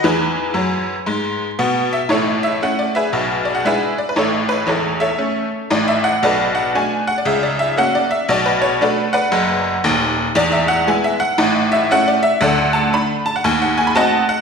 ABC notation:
X:1
M:4/4
L:1/16
Q:"Swing" 1/4=116
K:A
V:1 name="Honky-tonk piano"
[GB]12 z2 e2 | [EAc]2 e2 f d [GBe]4 d f [GBe]2 d B | [EAc]2 B2 [EAc]2 [Ace]6 d e f2 | [ABd]2 f2 g2 f d e d e2 f d e2 |
d B c2 [ABd]2 [Bdf]6 z4 | d e f2 g e f4 e2 f d e2 | [Adf]2 a2 b2 a f g f g b [^dfa]2 f2 |]
V:2 name="Honky-tonk piano" clef=bass
[E,,E,]4 [F,,F,]4 [G,,G,]4 [B,,B,]4 | [A,,,A,,]4 [A,CE]4 [B,,,B,,]4 [G,DE]4 | [A,,,A,,]4 [E,,,E,,]4 [A,C]4 [A,,,A,,]4 | [B,,,B,,]4 [A,DF]4 [C,,C,]4 [^A,CF]4 |
[B,,,B,,]4 [A,DF]4 [F,,,F,,]4 [^D,,,^D,,]4 | [E,,,E,,]4 [G,B,E]4 [A,,,A,,]4 [A,CE]4 | [D,,D,]4 [A,D]4 [^D,,^D,]4 [A,^B,F]4 |]